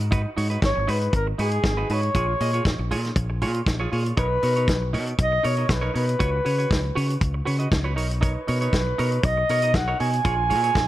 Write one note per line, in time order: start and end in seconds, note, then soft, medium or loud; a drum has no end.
0.00 0.25 G#2 medium
0.00 closed hi-hat soft
0.11 0.29 D#4 medium
0.11 0.24 F#4 medium
0.11 0.23 B4 loud
0.11 kick medium
0.11 closed hi-hat medium
0.24 muted clean electric guitar stroke soft
0.37 0.56 G#2 loud
0.37 0.50 D#4 medium
0.37 0.49 F#4 medium
0.37 0.50 C#5 medium
0.37 open hi-hat medium
0.50 0.61 D#4 medium
0.50 0.61 F#4 medium
0.50 0.62 B4 medium
0.50 closed hi-hat soft
0.62 0.73 G#1 medium
0.62 0.92 C#5 loud
0.62 muted clean electric guitar stroke soft
0.62 kick loud
0.62 snare loud
0.62 closed hi-hat medium
0.76 0.85 G#1 medium
0.76 muted clean electric guitar stroke soft
0.87 1.07 G#2 loud
0.87 1.05 D#4 medium
0.87 1.01 F#4 medium
0.87 1.00 B4 loud
0.87 1.15 B4 loud
0.87 open hi-hat medium
1.01 muted clean electric guitar stroke soft
1.01 closed hi-hat soft
1.13 1.32 G#1 loud
1.13 1.26 A#4 medium
1.13 muted clean electric guitar stroke soft
1.13 kick medium
1.13 closed hi-hat medium
1.27 muted clean electric guitar stroke soft
1.38 1.58 G#2 medium
1.38 1.56 D#4 medium
1.38 1.52 F#4 medium
1.38 1.94 G#4 medium
1.38 1.51 B4 medium
1.38 open hi-hat medium
1.51 muted clean electric guitar stroke soft
1.51 closed hi-hat soft
1.64 1.83 G#1 loud
1.64 muted clean electric guitar stroke soft
1.64 kick loud
1.64 snare loud
1.64 closed hi-hat medium
1.77 1.89 D#4 medium
1.77 1.89 F#4 medium
1.77 1.90 B4 medium
1.89 2.08 G#2 medium
1.89 2.04 D#4 medium
1.89 2.03 F#4 medium
1.89 2.02 B4 medium
1.89 2.92 C#5 loud
1.89 open hi-hat medium
2.03 closed hi-hat soft
2.15 2.34 A#1 loud
2.15 2.33 F4 medium
2.15 2.28 G#4 medium
2.15 2.27 C#5 medium
2.15 kick medium
2.15 closed hi-hat medium
2.29 muted clean electric guitar stroke soft
2.40 2.59 A#2 loud
2.40 2.53 F4 medium
2.40 2.53 G#4 medium
2.40 2.53 D#5 medium
2.40 open hi-hat medium
2.53 2.65 F4 medium
2.53 2.65 G#4 medium
2.53 2.66 C#5 medium
2.53 closed hi-hat soft
2.65 2.75 A#1 medium
2.65 kick loud
2.65 snare loud
2.65 closed hi-hat medium
2.79 2.93 A#1 medium
2.79 muted clean electric guitar stroke soft
2.91 3.10 A#2 medium
2.91 3.08 F4 medium
2.91 3.04 G#4 medium
2.91 3.03 C#5 medium
2.91 open hi-hat medium
3.04 muted clean electric guitar stroke soft
3.04 snare soft
3.04 closed hi-hat soft
3.16 3.43 A#1 loud
3.16 muted clean electric guitar stroke soft
3.16 kick medium
3.16 closed hi-hat medium
3.30 muted clean electric guitar stroke medium
3.41 3.61 A#2 medium
3.41 3.59 F4 medium
3.41 3.54 G#4 medium
3.41 3.54 C#5 medium
3.41 open hi-hat medium
3.54 muted clean electric guitar stroke soft
3.54 closed hi-hat medium
3.66 3.86 A#1 medium
3.66 muted clean electric guitar stroke soft
3.66 kick loud
3.66 snare loud
3.66 closed hi-hat medium
3.80 3.90 F4 medium
3.80 3.91 G#4 medium
3.80 3.92 C#5 medium
3.92 4.11 A#2 loud
3.92 4.06 F4 medium
3.92 4.05 G#4 medium
3.92 4.04 C#5 medium
3.92 open hi-hat medium
4.05 muted clean electric guitar stroke soft
4.05 closed hi-hat soft
4.17 4.37 B1 loud
4.17 4.35 D#4 medium
4.17 4.30 A#4 medium
4.17 4.90 B4 loud
4.17 4.29 C#5 medium
4.17 kick loud
4.17 closed hi-hat medium
4.30 muted clean electric guitar stroke soft
4.43 4.70 B2 loud
4.43 4.56 D#4 medium
4.43 4.55 A#4 medium
4.43 4.55 C#5 medium
4.43 open hi-hat medium
4.56 4.70 D#4 soft
4.56 4.69 A#4 medium
4.56 4.69 C#5 medium
4.56 closed hi-hat soft
4.68 4.95 B1 medium
4.68 kick loud
4.68 snare loud
4.68 closed hi-hat medium
4.82 muted clean electric guitar stroke soft
4.93 5.13 B2 medium
4.93 5.11 D#4 medium
4.93 5.06 A#4 medium
4.93 5.05 C#5 medium
4.93 open hi-hat medium
5.07 muted clean electric guitar stroke soft
5.07 closed hi-hat soft
5.18 5.38 B1 loud
5.18 5.48 D#5 loud
5.18 muted clean electric guitar stroke soft
5.18 kick loud
5.18 closed hi-hat medium
5.32 muted clean electric guitar stroke soft
5.43 5.63 B2 medium
5.43 5.57 D#4 medium
5.43 5.57 A#4 medium
5.43 5.57 C#5 medium
5.43 5.73 C#5 medium
5.43 open hi-hat medium
5.57 5.68 D#4 medium
5.57 5.68 A#4 medium
5.57 5.69 D#5 medium
5.57 closed hi-hat soft
5.69 5.88 B1 loud
5.69 5.96 B4 medium
5.69 muted clean electric guitar stroke soft
5.69 kick loud
5.69 snare loud
5.69 closed hi-hat medium
5.81 5.92 D#4 medium
5.81 5.93 A#4 medium
5.81 5.94 C#5 medium
5.94 6.14 B2 loud
5.94 6.08 D#4 medium
5.94 6.08 A#4 medium
5.94 7.44 B4 loud
5.94 6.07 C#5 medium
5.94 open hi-hat medium
6.08 muted clean electric guitar stroke soft
6.08 closed hi-hat medium
6.19 6.39 C#2 loud
6.19 6.37 F#4 medium
6.19 6.32 B4 medium
6.19 6.32 C#5 loud
6.19 kick medium
6.19 closed hi-hat medium
6.33 muted clean electric guitar stroke soft
6.45 6.65 C#3 medium
6.45 6.58 F#4 medium
6.45 6.58 B4 medium
6.45 6.57 C#5 medium
6.45 open hi-hat medium
6.58 6.72 F#4 medium
6.58 6.72 B4 medium
6.58 6.71 C#5 medium
6.58 closed hi-hat soft
6.71 6.90 C#2 medium
6.71 kick loud
6.71 snare loud
6.71 closed hi-hat medium
6.84 muted clean electric guitar stroke soft
6.95 7.15 C#3 medium
6.95 7.13 F#4 medium
6.95 7.08 B4 medium
6.95 7.08 C#5 medium
6.95 open hi-hat medium
7.09 muted clean electric guitar stroke soft
7.09 closed hi-hat soft
7.21 7.40 C#2 loud
7.21 muted clean electric guitar stroke soft
7.21 kick loud
7.21 closed hi-hat medium
7.34 muted clean electric guitar stroke medium
7.45 7.66 C#3 medium
7.45 7.59 F#4 medium
7.45 7.59 B4 medium
7.45 7.58 C#5 medium
7.45 open hi-hat medium
7.59 7.70 F#4 medium
7.59 7.70 B4 medium
7.59 7.72 D#5 medium
7.59 closed hi-hat soft
7.71 7.98 C#2 loud
7.71 muted clean electric guitar stroke soft
7.71 kick loud
7.71 snare loud
7.71 closed hi-hat medium
7.84 7.96 F#4 medium
7.84 7.96 B4 medium
7.84 7.96 C#5 medium
7.96 8.35 B1 loud
7.96 8.11 D#4 medium
7.96 8.09 A#4 medium
7.96 8.08 C#5 medium
7.96 open hi-hat medium
8.09 muted clean electric guitar stroke soft
8.09 closed hi-hat soft
8.21 8.39 D#4 medium
8.21 8.35 A#4 medium
8.21 9.26 B4 medium
8.21 8.34 C#5 medium
8.21 kick medium
8.21 closed hi-hat medium
8.35 muted clean electric guitar stroke soft
8.47 8.67 B2 loud
8.47 8.61 D#4 medium
8.47 8.60 A#4 medium
8.47 8.60 C#5 medium
8.47 open hi-hat medium
8.61 8.75 D#4 medium
8.61 8.74 A#4 medium
8.61 8.74 C#5 medium
8.61 closed hi-hat soft
8.73 8.92 B1 medium
8.73 kick loud
8.73 snare loud
8.73 closed hi-hat medium
8.87 muted clean electric guitar stroke soft
8.98 9.18 B2 medium
8.98 9.16 D#4 medium
8.98 9.12 A#4 loud
8.98 9.11 C#5 loud
8.98 open hi-hat medium
9.12 muted clean electric guitar stroke soft
9.12 closed hi-hat soft
9.23 9.43 B1 loud
9.23 9.77 D#5 loud
9.23 muted clean electric guitar stroke soft
9.23 kick loud
9.23 closed hi-hat medium
9.37 muted clean electric guitar stroke medium
9.49 9.76 B2 medium
9.49 9.63 D#4 medium
9.49 9.62 A#4 medium
9.49 9.62 C#5 medium
9.49 open hi-hat medium
9.62 9.73 D#4 medium
9.62 9.73 A#4 medium
9.62 9.75 D#5 medium
9.62 closed hi-hat medium
9.74 9.93 B1 loud
9.74 10.00 F#5 loud
9.74 muted clean electric guitar stroke soft
9.74 kick loud
9.74 snare loud
9.74 closed hi-hat medium
9.88 9.98 D#4 medium
9.88 9.99 A#4 medium
9.88 9.99 C#5 medium
9.99 10.19 B2 loud
9.99 10.14 D#4 medium
9.99 10.12 A#4 medium
9.99 10.12 C#5 medium
9.99 10.88 G#5 loud
9.99 open hi-hat medium
10.13 muted clean electric guitar stroke soft
10.13 closed hi-hat medium
10.25 10.52 A#1 loud
10.25 10.42 F4 medium
10.25 10.37 G#4 medium
10.25 10.36 C#5 loud
10.25 kick loud
10.25 closed hi-hat medium
10.37 muted clean electric guitar stroke medium
10.49 10.70 A#2 loud
10.49 10.63 F4 medium
10.49 10.63 G#4 medium
10.49 10.62 C#5 medium
10.49 open hi-hat medium
10.63 10.77 F4 medium
10.63 10.76 G#4 medium
10.63 10.76 C#5 medium
10.63 closed hi-hat soft
10.75 10.88 A#1 medium
10.75 kick loud
10.75 snare loud
10.75 closed hi-hat medium